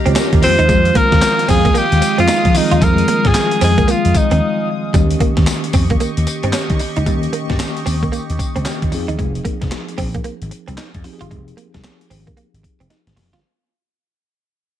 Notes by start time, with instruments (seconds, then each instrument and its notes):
Already playing: tine electric piano D#3 G3 A#3 C#4 G4 D#5, analog synth pad G4 F5 A#5
0.06 slap bass C#2, clean electric guitar C4, tine electric piano F4 C#5, closed hi-hat
0.16 clean electric guitar C#4, tine electric piano C#4 A#4, snare, clap, closed hi-hat, tambourine
0.33 slap bass D#2, tine electric piano A#3 G4, kick, closed hi-hat
0.42 slap bass F2, tine electric piano D#3 F3 G3 C4 F4, analog synth pad G#3 D#6, alto saxophone C5, muted clean electric guitar stroke, open hi-hat, tambourine
0.49 tine electric piano G#3
0.59 slap bass D#2, clean electric guitar D#4, closed hi-hat
0.69 slap bass F2, clean electric guitar G#3, kick, closed hi-hat, tambourine
0.85 closed hi-hat
0.95 clean electric guitar A#3, alto saxophone A#4, kick, closed hi-hat
1.12 slap bass D#2, muted clean electric guitar stroke, kick, snare, closed hi-hat
1.22 muted clean electric guitar stroke, snare, clap, closed hi-hat, tambourine
1.39 closed hi-hat
1.48 slap bass F2, clean electric guitar C4, alto saxophone G#4, kick, open hi-hat, tambourine
1.65 clean electric guitar A#3, kick, closed hi-hat
1.74 clean electric guitar A#3, alto saxophone G4, closed hi-hat, tambourine
1.92 slap bass D#2, closed hi-hat
2.02 muted clean electric guitar stroke, closed hi-hat, tambourine
2.18 slap bass F2, clean electric guitar C4, alto saxophone F4, closed hi-hat
2.28 clean electric guitar D#4, snare, clap, closed hi-hat, tambourine
2.45 slap bass F3, kick, closed hi-hat
2.55 tine electric piano D#3 F3 G3 C4 F4, alto saxophone D#4, muted clean electric guitar stroke, open hi-hat, tambourine
2.62 tine electric piano G#3
2.71 slap bass D#2, clean electric guitar F4, closed hi-hat
2.81 slap bass F2, clean electric guitar G#3, alto saxophone A#4, kick, closed hi-hat, tambourine
2.98 closed hi-hat
3.08 clean electric guitar A#3, closed hi-hat
3.25 slap bass G#2, alto saxophone G#4, muted clean electric guitar stroke, kick, snare, closed hi-hat
3.34 muted clean electric guitar stroke, snare, clap, closed hi-hat, tambourine
3.51 closed hi-hat
3.61 slap bass F2, clean electric guitar C4, alto saxophone G#4, open hi-hat, tambourine
3.78 clean electric guitar A#3, kick, closed hi-hat
3.88 clean electric guitar A#3, alto saxophone F4, closed hi-hat, tambourine
4.05 slap bass F2, closed hi-hat
4.15 alto saxophone D#4, muted clean electric guitar stroke, kick, closed hi-hat, tambourine
4.31 slap bass D#2, clean electric guitar C4, closed hi-hat
4.93 slap bass D#2, tine electric piano D#3 A#3 C#4 G4, clean electric guitar G3, analog synth pad G4 D#5 C#6, kick, closed hi-hat, tambourine
5.11 closed hi-hat
5.20 clean electric guitar A#3, kick, closed hi-hat
5.37 slap bass D#2, muted clean electric guitar stroke, kick, snare, closed hi-hat
5.47 muted clean electric guitar stroke, snare, clap, closed hi-hat, tambourine
5.64 closed hi-hat
5.73 slap bass F2, clean electric guitar C4, kick, open hi-hat, tambourine
5.90 clean electric guitar A#3, kick, closed hi-hat
6.00 clean electric guitar A#3, closed hi-hat, tambourine
6.17 slap bass D#2, closed hi-hat
6.27 muted clean electric guitar stroke, closed hi-hat, tambourine
6.43 slap bass G2, clean electric guitar C4, closed hi-hat
6.53 clean electric guitar C#4, snare, clap, closed hi-hat, tambourine
6.70 slap bass D#3, kick, closed hi-hat
6.79 muted clean electric guitar stroke, open hi-hat, tambourine
6.96 slap bass C#2, clean electric guitar D#4, closed hi-hat
7.06 slap bass D#2, tine electric piano D#3 A#3 C#4 G4, clean electric guitar G3, kick, closed hi-hat, tambourine
7.23 closed hi-hat
7.33 clean electric guitar A#3, closed hi-hat
7.50 slap bass G2, muted clean electric guitar stroke, kick, snare, closed hi-hat
7.60 muted clean electric guitar stroke, snare, clap, closed hi-hat, tambourine
7.77 closed hi-hat
7.86 slap bass D#2, clean electric guitar C4, open hi-hat, tambourine
8.03 clean electric guitar A#3, kick, closed hi-hat
8.12 clean electric guitar A#3, closed hi-hat, tambourine
8.30 slap bass D#2, closed hi-hat
8.39 muted clean electric guitar stroke, kick, closed hi-hat, tambourine
8.56 slap bass C#2, clean electric guitar C4, closed hi-hat
8.65 tine electric piano D#3 A#3 C#4 G4, clean electric guitar C#4, snare, clap, closed hi-hat, tambourine
8.82 slap bass D#2, kick, closed hi-hat
8.92 slap bass F2, tine electric piano F3 C4 D#4 G#4, muted clean electric guitar stroke, open hi-hat, tambourine
9.08 slap bass D#2, clean electric guitar D#4, closed hi-hat
9.19 slap bass F1, clean electric guitar G#3, kick, closed hi-hat
9.35 closed hi-hat
9.45 clean electric guitar A#3, kick, closed hi-hat
9.61 slap bass F1, muted clean electric guitar stroke, kick, snare, closed hi-hat
9.71 muted clean electric guitar stroke, snare, clap, closed hi-hat
9.88 closed hi-hat
9.98 slap bass A#1, clean electric guitar C4, kick, open hi-hat
10.14 clean electric guitar A#3, kick, closed hi-hat
10.24 clean electric guitar A#3, closed hi-hat
10.42 slap bass G#1, closed hi-hat
10.51 muted clean electric guitar stroke, closed hi-hat
10.68 slap bass C2, clean electric guitar C4, closed hi-hat
10.78 clean electric guitar D#4, snare, clap, closed hi-hat
10.94 slap bass F2, kick, closed hi-hat
11.04 tine electric piano F3 C4 D#4 G4, muted clean electric guitar stroke, open hi-hat
11.13 tine electric piano G#4
11.21 slap bass G1, clean electric guitar F4, closed hi-hat
11.31 slap bass F1, clean electric guitar G#3, kick, closed hi-hat
11.48 closed hi-hat
11.57 clean electric guitar A#3, closed hi-hat
11.74 slap bass C2, muted clean electric guitar stroke, kick, snare, closed hi-hat
11.84 muted clean electric guitar stroke, snare, clap, closed hi-hat
12.01 closed hi-hat
12.10 slap bass G#1, clean electric guitar C4, open hi-hat
12.27 clean electric guitar A#3, kick, closed hi-hat
12.37 clean electric guitar A#3, closed hi-hat
12.54 slap bass G#1, closed hi-hat
12.63 muted clean electric guitar stroke, kick, closed hi-hat
12.80 slap bass F1, clean electric guitar C4, closed hi-hat
12.90 clean electric guitar D#4, snare, closed hi-hat
13.07 slap bass G#1, snare, closed hi-hat
13.16 slap bass F1, muted clean electric guitar stroke, snare, open hi-hat
13.33 slap bass G1, clean electric guitar F4, snare, closed hi-hat